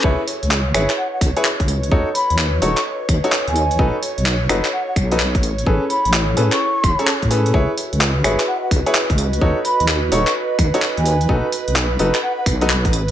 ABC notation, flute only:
X:1
M:4/4
L:1/16
Q:"Swing 16ths" 1/4=128
K:Bmix
V:1 name="Flute"
z8 f f z6 | z2 b2 z2 c'2 z4 z g3 | z8 f f z6 | z2 b2 z3 c'6 z3 |
z8 f f z6 | z2 b2 z2 c'2 z4 z g3 | z8 f f z6 |]